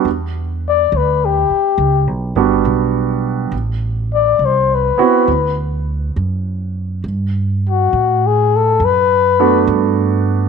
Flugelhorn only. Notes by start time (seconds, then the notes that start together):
0.69 D5
0.97 B4
1.25 G4
4.14 D5
4.45 C5
4.75 B4
7.70 F#4
8.27 G#4
8.56 A4
8.85 B4